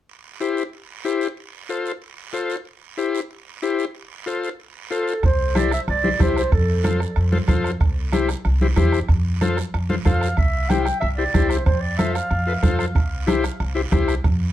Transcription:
0.09 long guiro
0.40 E4 G4 C5, short guiro
0.57 short guiro
0.73 long guiro
1.05 E4 G4 C5, short guiro
1.21 short guiro
1.37 long guiro
1.69 F4 A4 C5, short guiro
1.86 short guiro
2.02 long guiro
2.33 F4 A4 C5, short guiro
2.50 short guiro
2.65 long guiro
2.97 E4 G4 C5, short guiro
3.15 short guiro
3.31 long guiro
3.62 E4 G4 C5, short guiro
3.79 short guiro
3.95 long guiro
4.26 F4 A4 C5, short guiro
4.44 short guiro
4.60 long guiro
4.91 F4 A4 C5, short guiro
5.08 short guiro
5.23 C2 C5, bombo low, bombo rim, long guiro
5.55 E4 G4 C5 D5, bombo rim, high conga, short guiro
5.71 E5, bombo rim, short guiro
5.88 C2 D5, bombo rim, long guiro
6.03 E4 G4 C5, high conga
6.19 C2 E4 G4 C5, bombo low, bombo rim, high conga, short guiro
6.36 C5, bombo rim, short guiro
6.52 F2 A4, bombo low, bombo rim, long guiro
6.84 F4 A4 C5, bombo rim, high conga, short guiro
7.00 bombo rim, short guiro
7.16 F2, bombo rim, long guiro
7.32 F4 A4 C5, high conga
7.48 F2 F4 A4 C5, bombo low, bombo rim, high conga, short guiro
7.64 bombo rim, short guiro
7.80 C2, bombo low, bombo rim, long guiro
8.12 E4 G4 C5, bombo rim, high conga, short guiro
8.29 bombo rim, short guiro
8.45 C2, bombo rim, long guiro
8.61 E4 G4 C5, high conga
8.76 E2 E4 G4 C5, bombo low, bombo rim, high conga, short guiro
8.92 bombo rim, short guiro
9.08 F2, bombo low, bombo rim, long guiro
9.41 F4 A4 C5, bombo rim, high conga, short guiro
9.57 bombo rim, short guiro
9.74 F2, bombo rim, long guiro
9.89 F4 A4 C5, high conga
10.05 F2 F4 A4 C5 F5, bombo low, bombo rim, high conga, short guiro
10.21 bombo rim, short guiro
10.37 C2 E5, bombo low, bombo rim, long guiro
10.69 E4 G4 C5 G5, bombo rim, high conga, short guiro
10.84 G5, bombo rim, short guiro
11.00 C2 E5, bombo rim, long guiro
11.17 E4 G4 C5 D5
11.34 C2 E4 G4 C5, bombo low, bombo rim, high conga, short guiro
11.50 C5, bombo rim, short guiro
11.66 F2 C5, bombo low, bombo rim, long guiro
11.81 D5
11.98 F4 A4 C5 E5, bombo rim, high conga, short guiro
12.14 F5, bombo rim, short guiro
12.31 F2, bombo rim, long guiro
12.47 F4 A4 B4
12.63 F2 F4 A4 C5, bombo low, bombo rim, high conga, short guiro
12.79 bombo rim, short guiro
12.95 C2, bombo low, bombo rim, long guiro
13.27 E4 G4 C5, bombo rim, high conga, short guiro
13.44 bombo rim, short guiro
13.60 C2, bombo rim, long guiro
13.75 E4 G4 C5
13.91 C2 E4 G4 C5, bombo low, bombo rim, high conga, short guiro
14.08 bombo rim, short guiro
14.24 F2, bombo low, bombo rim, long guiro

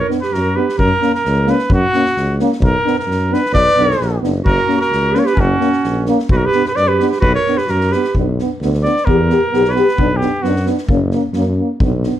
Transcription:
0.01 A#4
0.08 B3 D4, snare
0.21 G4 B4, snare
0.32 F#2 F#4 A#4, snare
0.56 B3 D4 G4 B4
0.69 snare
0.78 F#2 A#4, kick
1.01 A#3 C#4, snare
1.15 A#4, snare
1.25 C#2, snare
1.46 A#3 C#4, snare
1.50 B4
1.59 snare
1.70 F#2, kick
1.74 F#4
1.93 A#3 C#4, snare
2.06 snare
2.17 C#2, snare
2.40 A#3 C#4, snare
2.52 snare
2.61 B1 A#4, kick
2.85 B3 D4, snare
2.99 A#4, snare
3.07 F#2
3.11 snare
3.31 B3 D4 B4, snare
3.46 snare
3.52 B1 B4 D5, kick
3.69 snare
3.76 B1 B3 D4, snare
3.91 snare
3.99 A#1, snare
4.22 F#1 B3 D4, snare
4.43 F#1 F#4 A#4, kick
4.67 A#3 C#4, snare
4.77 F#4 A#4, snare
4.90 C#2, snare
5.11 C#4 G4 B4
5.15 A#3 A#4, snare
5.19 C#5
5.24 G4 B4, snare
5.35 F#1 C#4, kick
5.40 F#4
5.59 A#3 C#4, snare
5.73 snare
5.84 A#1, snare
6.06 A#3 C#4, snare
6.19 snare
6.29 B1 F#4 B4, kick
6.37 F#4 A#4
6.45 G4 B4
6.52 B3 D4, snare
6.65 G4 B4, snare
6.72 B4 D5
6.76 F#2, snare
6.87 G4 B4
7.00 B3 D4, snare
7.09 G4 B4, snare
7.20 B1 F#4 B4, kick
7.35 A#4 C#5
7.46 B3 D4, snare
7.57 G4 B4, snare
7.65 F#2 F#4, snare
7.70 A#4
7.81 snare
7.89 G4 B4, snare
7.94 B3 D4
8.04 snare
8.15 B1 B3 D4, kick
8.39 B3 D4, snare
8.61 D2 B3, snare
8.65 D4
8.74 snare
8.83 B3 D4 D5, snare
8.96 snare
9.05 E2 B3 G4 A#4, kick
9.29 B3 G4, snare
9.52 B1 B3 G4, snare
9.65 snare
9.69 B4 C#5
9.74 B3 G4, snare
9.88 snare
9.97 B1 B3 D4, kick
10.17 B3 G4
10.21 D4, snare
10.42 F#2 B3 D4 F#4, snare
10.56 snare
10.66 B3 D4, snare
10.78 snare
10.88 F#1 A#3 C#4, kick
11.11 A#3 C#4, snare
11.33 F#2 A#3 C#4, snare
11.59 A#3 C#4
11.80 B1 B3 D4, kick
12.03 B3 D4, snare

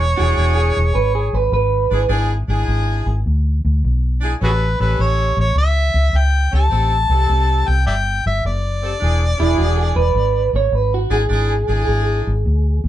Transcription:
Already playing: E1 C#5
0.17 E1 D4 E4 F#4 G#4
0.37 E1
0.56 G#4
0.77 E1
0.95 G#1 B4
1.15 G#4
1.33 G#1 B4
1.52 G#1 B4
1.90 G#1 D4 E4 G#4
2.08 G#1 D4 E4 G#4
2.48 G#1 D4 E4 G#4
2.68 G#1
3.06 G#1
3.26 D2
3.65 D2
3.84 B1
4.21 D4 E4 G#4
4.40 A1 C#4 G4 A4
4.44 F#4 G#4 B4
4.78 A1 C#4 G4 A4 B4
4.99 A1 C#5
5.37 A1 C#5
5.56 C#2 E5
5.94 C#2
6.13 C#2
6.17 G5
6.52 C#2 C#4 G4 A4 A5
6.70 A1 C4 G4 A4
7.09 C2 C4 G4 A4
7.29 C2
7.68 C2 G5
7.86 G1 D5 E5 G5
8.26 G1 E5
8.45 F#1 D5
8.81 C4 G4 A4
9.00 E1 D4 E4 G#4
9.37 E1 D4 E4 G#4
9.58 E1 F#4
9.77 G#4
9.95 E1 B4
10.14 G#1
10.53 G#1 C#5
10.72 G#1 B4
10.94 F#4
11.09 G#1 D4 E4 G#4
11.13 G#4
11.29 G#1 D4 E4 G#4
11.67 G#1 D4 E4 G#4
11.88 G#1
12.27 G#1
12.46 D2
12.84 D2

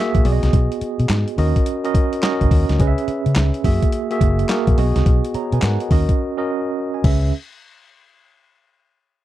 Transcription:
Already playing: A#3 F#4 G#4 E5
0.15 A#1, kick, closed hi-hat
0.25 B1 B3 F#4 G#4 D5, open hi-hat
0.32 D#5
0.43 C2, snare, closed hi-hat
0.53 B1, kick, closed hi-hat
0.72 closed hi-hat
0.81 muted fingered electric bass stroke, closed hi-hat
1.00 B2, closed hi-hat
1.09 G#2, snare, clap, closed hi-hat
1.28 closed hi-hat
1.38 D#2 C#4 F#4 A#4 D#5, open hi-hat
1.56 kick, closed hi-hat
1.66 closed hi-hat
1.84 C#4 F#4 A#4 D#5, closed hi-hat
1.95 kick, closed hi-hat
2.13 closed hi-hat
2.23 C#4 F#4 A#4 D#5, snare, clap, closed hi-hat
2.41 G#1, kick, closed hi-hat
2.51 D#2, kick, open hi-hat
2.69 D2, snare, closed hi-hat
2.80 C#2 C#4 G#4 B4 D#5, kick, closed hi-hat
2.87 E5
2.98 closed hi-hat
3.08 muted fingered electric bass stroke, closed hi-hat
3.26 C#3, closed hi-hat
3.36 C#2, snare, clap, closed hi-hat
3.54 closed hi-hat
3.64 F#2 A#3 F#4 G#4 E5, kick, open hi-hat
3.82 kick, closed hi-hat
3.92 closed hi-hat
4.11 A#3 F#4 G#4 E5, closed hi-hat
4.21 F#1, kick, closed hi-hat
4.39 closed hi-hat
4.49 A#3 F#4 G#4 A#4, snare, clap, closed hi-hat
4.67 A#1, kick, closed hi-hat
4.78 B1 B3 F#4 G#4 D#5, open hi-hat
4.96 C2, snare, closed hi-hat
5.06 B1, kick, closed hi-hat
5.25 closed hi-hat
5.34 C#5 A#5, muted fingered electric bass stroke, closed hi-hat
5.52 B2 B4 G#5, closed hi-hat
5.62 G#2 A#4 F#5, snare, clap, closed hi-hat
5.80 F#4 D#5, closed hi-hat
5.91 D#2 C#4 F#4 A#4 D#5, kick, open hi-hat
6.09 kick, closed hi-hat
6.37 C#4 F#4 A#4 D#5
6.94 G#5
7.04 C#2 C#4 G#4 B4 E5, kick, crash

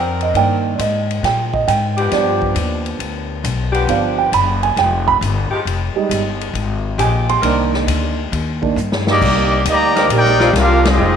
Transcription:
Already playing: F2 D#3 C4 D4 A#4 G5
0.21 D#5, ride
0.34 G2 D#3 A#3 D4 G5, ride
0.76 G#2 D5, hi-hat pedal, ride
0.81 D#5
1.11 ride
1.23 A#2 G5, snare, ride
1.54 D#5, kick
1.68 G#2 G5, hi-hat pedal, ride
1.97 F3 B3 D4 G4, ride
2.11 G2 F3 B3 D4 D5, snare, ride
2.42 kick
2.55 D#2, hi-hat pedal, ride
2.86 ride
2.99 D2, ride
3.44 B1, hi-hat pedal, ride
3.72 F3 B3 D4 G4, ride
3.87 G1 F3 B3 D4 F5, ride
4.18 G5
4.32 F#1 B5, hi-hat pedal, ride
4.63 G#5, ride
4.76 F1 G5, snare, ride
5.08 B5, kick
5.21 G1, hi-hat pedal, ride
5.51 F3 G#3 D#4 G4, muted upright bass stroke
5.65 F1, ride
5.95 G3 G#3 D#4, muted upright bass stroke
6.09 G1, hi-hat pedal, ride
6.41 ride
6.53 G#1, ride
6.98 A#1 F3 G#3 D#4 G4 G#5, hi-hat pedal, ride
7.29 C6, ride
7.42 C2 D#3 A#3 C4 D4 A#4, ride
7.74 snare
7.87 D2, hi-hat pedal, ride
8.32 D#2, ride
8.62 D#3 A#3 D4, kick
8.76 G2, hi-hat pedal
8.92 snare
9.07 G3 A#3 D#4 G4 D5 D#5, snare
9.21 C2, kick, crash
9.65 D2 G3 A#3 D#4, hi-hat pedal, ride
9.70 G4 D5 D#5 A#5
9.95 D#3 C4 D4 A#4, snare, ride
10.09 A#1 A#3 G4, ride
10.13 D#4 A#4 D5 G5
10.25 snare
10.39 D#3 C4 D4 F4, snare
10.53 C2 F4, snare, hi-hat pedal, ride
10.59 D4 G4 A#4 F5
10.85 G#3 C4 D#4 G4 G#4 D#5, snare, ride
10.98 F1 F3 G#3 D#4 F4

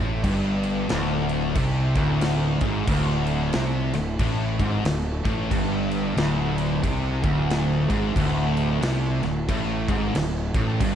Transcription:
Already playing: A1 A2
0.24 G1 G2, kick, crash
0.63 crash
0.89 D1 D2, snare, crash
1.29 crash
1.55 C2 C3, kick, crash
1.95 D1 D2, kick, crash
2.21 snare, crash
2.61 G#1 G#2, kick, crash
2.87 D1 D2, kick, crash
3.27 crash
3.53 C2 C3, snare, crash
3.93 D1 D2, snare, crash
4.19 A1 A2, kick, crash
4.59 G#1 G#2, kick, crash
4.83 D1 D2, snare, crash
5.25 A1 A2, kick, crash
5.51 G1 G2, kick, crash
5.91 crash
6.16 D1 D2, snare, crash
6.58 crash
6.83 C2 C3, kick, crash
7.22 D1 D2, kick, crash
7.50 snare, crash
7.89 G#1 G#2, kick, crash
8.15 D1 D2, kick, crash
8.57 crash
8.82 C2 C3, snare, crash
9.22 D1 D2, snare, crash
9.49 A1 A2, kick, crash
9.88 G#1 G#2, kick, crash
10.15 D1 D2, snare, crash
10.54 A1 A2, kick, crash
10.80 G1 G2, kick, crash

